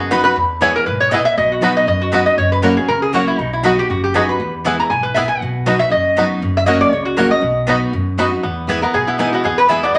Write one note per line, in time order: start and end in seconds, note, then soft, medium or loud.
0.00 0.25 F#1 medium
0.00 0.35 F#2 medium
0.00 0.34 B3 medium
0.00 0.11 G#4 medium
0.11 0.24 F#3 medium
0.11 0.21 B3 medium
0.11 0.24 B3 medium
0.11 0.24 D#4 loud
0.11 0.36 F#4 medium
0.11 0.21 F#4 medium
0.11 0.23 F#4 loud
0.11 0.22 B4 loud
0.11 0.21 D#5 loud
0.11 0.21 B5 loud
0.24 0.36 D#4 medium
0.24 0.36 F#4 medium
0.24 0.35 B4 loud
0.24 0.36 B4 medium
0.36 0.84 E2 loud
0.36 0.76 E2 loud
0.61 0.85 E3 medium
0.61 0.86 G#3 medium
0.61 0.71 B3 loud
0.61 0.68 B3 medium
0.61 0.86 B3 medium
0.61 0.71 E4 loud
0.61 0.68 E4 medium
0.61 0.86 E4 loud
0.61 0.68 G#4 medium
0.61 0.71 B4 loud
0.61 0.75 C#5 medium
0.61 0.72 G#5 loud
0.76 0.86 A#4 loud
0.86 1.26 B1 medium
0.86 1.11 G#2 medium
0.86 1.00 B4 medium
1.00 1.12 C#5 loud
1.11 1.36 A#2 medium
1.11 1.21 B3 medium
1.11 1.19 B3 medium
1.11 1.22 E4 medium
1.11 1.19 E4 medium
1.11 1.19 G#4 medium
1.11 1.22 B4 loud
1.11 1.25 D#5 medium
1.11 1.22 G#5 loud
1.25 1.37 E5 loud
1.37 1.76 B1 medium
1.37 1.86 B2 loud
1.37 1.51 D#5 loud
1.52 1.63 F#4 medium
1.61 1.86 F#3 medium
1.61 1.86 B3 loud
1.61 1.72 B3 medium
1.61 1.69 B3 medium
1.61 1.87 D#4 loud
1.61 1.69 D#4 medium
1.61 1.72 F#4 loud
1.61 1.87 F#4 loud
1.61 1.69 F#4 medium
1.61 1.77 B4 medium
1.61 1.72 D#5 medium
1.61 1.73 B5 loud
1.77 1.87 D#5 loud
1.87 2.36 F#2 medium
1.87 2.27 F#2 medium
1.87 2.01 D#5 medium
2.01 2.13 F#4 medium
2.12 2.26 F#3 medium
2.12 2.22 B3 medium
2.12 2.26 B3 loud
2.12 2.20 B3 medium
2.12 2.27 D#4 loud
2.12 2.20 D#4 medium
2.12 2.23 F#4 loud
2.12 2.24 F#4 loud
2.12 2.20 F#4 medium
2.12 2.27 B4 medium
2.12 2.23 D#5 loud
2.12 2.23 B5 loud
2.26 2.38 D#4 medium
2.26 2.37 F#4 medium
2.26 2.37 D#5 loud
2.37 2.77 F#1 loud
2.37 2.87 F#2 loud
2.37 2.51 C#5 medium
2.52 2.63 B4 loud
2.62 2.76 F#3 loud
2.62 2.73 A#3 medium
2.62 2.77 A#3 loud
2.62 2.77 C#4 loud
2.62 2.70 C#4 medium
2.62 2.73 F#4 medium
2.62 2.76 F#4 loud
2.62 2.67 F#4 medium
2.62 2.76 A#4 medium
2.62 2.73 C#5 loud
2.62 2.73 F#5 loud
2.77 2.89 C#4 medium
2.77 2.88 F#4 medium
2.77 2.88 G#4 medium
2.88 3.27 C#2 medium
2.88 3.37 C#3 loud
2.88 3.02 A#4 loud
3.02 3.13 G#4 medium
3.13 3.38 F#3 medium
3.13 3.23 A#3 medium
3.13 3.38 A#3 medium
3.13 3.38 C#4 loud
3.13 3.20 C#4 medium
3.13 3.23 F#4 medium
3.13 3.28 F#4 medium
3.13 3.38 F#4 loud
3.13 3.17 F#4 medium
3.13 3.24 C#5 loud
3.13 3.24 F#5 loud
3.27 3.39 E4 medium
3.39 3.78 B1 medium
3.39 3.87 B2 loud
3.39 3.52 D#4 medium
3.53 3.64 E4 medium
3.63 3.77 F#3 loud
3.63 3.74 B3 loud
3.63 3.78 B3 loud
3.63 3.71 B3 medium
3.63 3.78 D#4 loud
3.63 3.71 D#4 medium
3.63 3.74 F#4 loud
3.63 3.77 F#4 loud
3.63 3.78 F#4 medium
3.63 3.71 F#4 medium
3.63 3.74 D#5 loud
3.63 3.74 B5 loud
3.78 3.90 D#4 soft
3.78 3.89 F#4 medium
3.78 3.89 G4 loud
3.90 4.29 F#1 medium
3.90 4.38 F#2 medium
3.90 4.03 F#4 medium
4.04 4.15 G4 medium
4.14 4.28 F#3 medium
4.14 4.24 B3 medium
4.14 4.21 B3 medium
4.14 4.29 B3 medium
4.14 4.21 D#4 medium
4.14 4.29 D#4 loud
4.14 4.25 F#4 medium
4.14 4.22 F#4 medium
4.14 4.27 F#4 loud
4.14 4.29 G#4 medium
4.14 4.25 D#5 medium
4.14 4.25 B5 loud
4.28 4.40 D#4 soft
4.28 4.39 F#4 medium
4.28 4.52 B4 medium
4.40 4.79 E2 medium
4.40 4.88 E2 medium
4.65 4.89 E3 medium
4.65 4.90 G#3 loud
4.65 4.75 B3 medium
4.65 4.72 B3 medium
4.65 4.90 B3 medium
4.65 4.75 E4 loud
4.65 4.72 E4 medium
4.65 4.90 E4 medium
4.65 4.72 G#4 medium
4.65 4.75 B4 loud
4.65 4.75 G#5 loud
4.80 4.90 A#5 loud
4.90 5.29 B1 medium
4.90 5.15 G#2 medium
4.90 5.04 G#5 medium
5.03 5.15 B4 medium
5.14 5.40 A#2 medium
5.14 5.25 B3 medium
5.14 5.22 B3 medium
5.14 5.26 E4 medium
5.14 5.23 E4 medium
5.14 5.23 G#4 medium
5.14 5.26 B4 loud
5.14 5.28 E5 medium
5.14 5.26 G#5 loud
5.28 5.39 G#5 loud
5.39 5.80 B1 medium
5.39 5.90 B2 medium
5.39 5.79 F#5 loud
5.66 5.79 F#3 loud
5.66 5.76 B3 medium
5.66 5.80 B3 medium
5.66 5.73 B3 medium
5.66 5.80 D#4 loud
5.66 5.73 D#4 medium
5.66 5.76 F#4 loud
5.66 5.79 F#4 loud
5.66 5.73 F#4 medium
5.66 5.76 D#5 loud
5.66 5.76 B5 loud
5.79 5.92 D#4 medium
5.79 5.91 F#4 medium
5.79 5.91 E5 loud
5.90 6.31 F#1 medium
5.90 6.39 F#2 medium
5.90 6.17 D#5 medium
6.17 6.41 F#3 medium
6.17 6.26 B3 medium
6.17 6.41 B3 medium
6.17 6.23 B3 medium
6.17 6.24 D#4 medium
6.17 6.42 D#4 loud
6.17 6.27 F#4 medium
6.17 6.24 F#4 medium
6.17 6.42 F#4 medium
6.17 6.27 D#5 loud
6.17 6.27 B5 loud
6.42 6.81 F#1 loud
6.42 6.90 F#2 loud
6.57 6.66 E5 loud
6.66 6.91 F#3 loud
6.66 6.77 A#3 loud
6.66 6.91 A#3 loud
6.66 6.92 C#4 loud
6.66 6.74 C#4 medium
6.66 6.77 F#4 medium
6.66 6.92 F#4 loud
6.66 6.70 F#4 medium
6.66 6.77 C#5 loud
6.66 6.80 D#5 loud
6.66 6.77 F#5 loud
6.81 6.92 D5 loud
6.92 7.31 C#2 medium
6.92 7.41 C#3 loud
6.92 7.05 C#5 medium
7.05 7.17 F#4 medium
7.17 7.31 F#3 medium
7.17 7.27 A#3 medium
7.17 7.31 A#3 loud
7.17 7.31 C#4 loud
7.17 7.24 C#4 medium
7.17 7.27 F#4 loud
7.17 7.29 F#4 loud
7.17 7.21 F#4 medium
7.17 7.31 A#4 medium
7.17 7.27 C#5 loud
7.17 7.27 F#5 loud
7.30 7.43 C#4 medium
7.30 7.42 F#4 medium
7.30 7.65 D#5 medium
7.41 7.82 B1 medium
7.41 7.90 B2 loud
7.67 7.92 F#3 medium
7.67 7.77 B3 loud
7.67 7.92 B3 loud
7.67 7.75 B3 medium
7.67 7.92 D#4 loud
7.67 7.75 D#4 medium
7.67 7.78 F#4 loud
7.67 7.92 F#4 loud
7.67 7.75 F#4 medium
7.67 7.78 D#5 loud
7.67 7.78 B5 loud
7.93 8.41 F#2 medium
7.93 8.32 F#2 medium
8.18 8.31 F#3 medium
8.18 8.28 B3 medium
8.18 8.32 B3 loud
8.18 8.25 B3 medium
8.18 8.32 D#4 medium
8.18 8.25 D#4 medium
8.18 8.28 F#4 medium
8.18 8.30 F#4 medium
8.18 8.25 F#4 medium
8.18 8.28 D#5 loud
8.18 8.29 B5 loud
8.31 8.44 D#4 soft
8.31 8.43 F#4 medium
8.43 8.83 E2 loud
8.43 8.92 E2 medium
8.43 8.83 B3 medium
8.67 8.81 E3 medium
8.67 8.82 G#3 medium
8.67 8.79 B3 medium
8.67 8.82 B3 loud
8.67 8.79 E4 loud
8.67 8.80 E4 medium
8.67 8.93 G#4 medium
8.67 8.79 B4 loud
8.67 8.79 G#5 loud
8.82 9.08 B3 medium
8.82 8.94 B3 soft
8.82 8.93 E4 medium
8.82 8.94 A#4 medium
8.94 9.33 B1 medium
8.94 9.42 B2 medium
8.94 9.08 G#4 medium
8.94 9.31 G#4 medium
9.07 9.34 B3 medium
9.07 9.19 E4 medium
9.18 9.43 E3 medium
9.18 9.44 G#3 medium
9.18 9.29 B3 medium
9.18 9.44 B3 loud
9.18 9.33 D#4 medium
9.18 9.29 E4 loud
9.18 9.56 E4 medium
9.18 9.44 E4 medium
9.18 9.29 B4 loud
9.18 9.29 G#5 loud
9.33 9.44 B3 medium
9.33 9.44 F#4 medium
9.44 9.93 E2 loud
9.44 9.64 E2 medium
9.44 9.81 B3 medium
9.44 9.58 G#4 medium
9.58 9.69 B4 loud
9.68 9.92 E2 medium
9.68 9.94 E3 medium
9.68 9.94 G#3 medium
9.68 9.79 B3 loud
9.68 9.95 B3 loud
9.68 9.79 E4 loud
9.68 9.95 E4 loud
9.68 9.94 G#4 medium
9.68 9.80 B4 loud
9.68 9.83 E5 medium
9.68 9.80 G#5 loud
9.83 9.99 B3 medium
9.83 9.94 D5 loud
9.95 9.99 D#2 medium
9.95 9.99 B2 medium
9.95 9.99 D#5 loud